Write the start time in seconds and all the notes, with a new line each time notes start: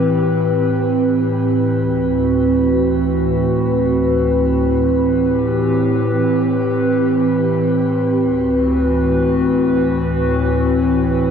Already playing: A2 E3 C4 G4 B4
1.70 D2 F#4
4.95 A2 E3 C4 G4 B4
8.19 D2 A2 E3 C4 F#4 B4